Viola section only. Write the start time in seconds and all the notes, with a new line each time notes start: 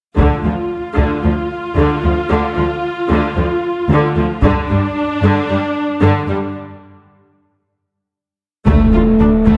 0.18 D3 F4
0.45 F3
0.97 D3
1.24 F3
1.77 D3
2.03 F3
2.30 D3
2.56 F3
3.09 D3
3.36 F3
3.89 D3
4.16 F3
4.42 D3 D4
4.70 G3
5.23 D3
5.50 G3
6.02 D3
6.29 G3
8.67 A3
8.93 F4
9.20 D4
9.46 A3